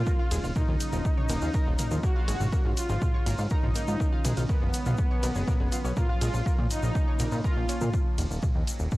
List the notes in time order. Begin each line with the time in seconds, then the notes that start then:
Already playing: C#3 A#3 C#4 F4
0.07 D#3 F#3 A#3 A#4, kick, shaker
0.19 F4 F5
0.31 D#1 G#3 G#4, closed hi-hat, ride, shaker
0.44 D#1 F4 F5, shaker
0.56 A#3 D#4 A#4, kick, mid tom, shaker
0.68 D#2 F3 F4
0.80 closed hi-hat, ride, shaker
0.92 D#1 F3 F4, shaker
1.05 kick, shaker
1.17 C#5 C#6, mid tom
1.29 D#1 A#3 A#4, closed hi-hat, ride, shaker
1.42 D#2 F4 F5, shaker
1.54 A#4 A#5, kick, shaker
1.67 D#1 F3 F4
1.79 A#3 A#4, closed hi-hat, mid tom, ride, shaker
1.91 D#2 F3 F4, shaker
2.03 G#3 A#3 F#4 A#4, kick, shaker
2.16 F4 F5
2.28 G#1 G#3 G#4, closed hi-hat, ride, shaker
2.40 G#1 F4 F5, mid tom, shaker
2.53 A#3 A#4, kick, shaker
2.65 G#2 F3 F4
2.77 F4, closed hi-hat, ride, shaker
2.89 G#1 F3 F4, shaker
3.02 kick, mid tom, shaker
3.14 C#5 C#6
3.26 G#1 A#3 A#4, closed hi-hat, ride, shaker
3.38 G#2 F4 F5, shaker
3.50 D#4 A#4 A#5, kick, shaker
3.63 G#1 F3 F4, mid tom
3.75 A#3 A#4, closed hi-hat, ride, shaker
3.88 G#2 F3 F4, shaker
4.00 F#3 A#3 A#4, kick, shaker
4.13 F4 F5
4.25 B1 G#3 G#4, closed hi-hat, mid tom, ride, shaker
4.37 B1 F4 F5, closed hi-hat, shaker
4.49 A#3 B3 A#4, kick, shaker
4.62 F#1 F3 F4
4.74 closed hi-hat, ride, shaker
4.86 B1 F3 F4, mid tom, shaker
4.97 kick, shaker
5.11 C#5 C#6
5.23 B1 A#3 A#4, closed hi-hat, ride, shaker
5.35 F#1 G#3 G#4, shaker
5.48 A#3 A#4, kick, mid tom, shaker
5.60 F#1 G#3 G#4
5.72 F4 F5, closed hi-hat, ride, shaker
5.85 B1 C#4 C#5, shaker
5.97 C#3 F3 A#3 F4 A#4, kick, mid tom, shaker
6.09 F4 F5
6.21 A#1 G#3 G#4, closed hi-hat, ride, shaker
6.34 A#1 F4 F5, shaker
6.46 A#3 A#4, kick, shaker
6.58 A#2 F3 F4, mid tom
6.71 D#4, closed hi-hat, ride, shaker
6.83 A#1 F3 F4, shaker
6.95 kick, shaker
7.08 C#5 C#6
7.19 A#1 A#3 A#4, closed hi-hat, mid tom, ride, shaker
7.32 A#2 F4 F5, shaker
7.44 F4 A#4 A#5, kick, shaker
7.57 A#1 F3 F4
7.69 C#4 C#5, closed hi-hat, ride, shaker
7.81 A#2 F3 F4, mid tom, shaker
7.93 D#3 F#3, kick, shaker
8.18 D#1, closed hi-hat, ride, shaker
8.31 D#1, shaker
8.43 kick, mid tom, shaker
8.55 D#2
8.67 closed hi-hat, ride, shaker
8.79 D#1, shaker
8.91 kick, shaker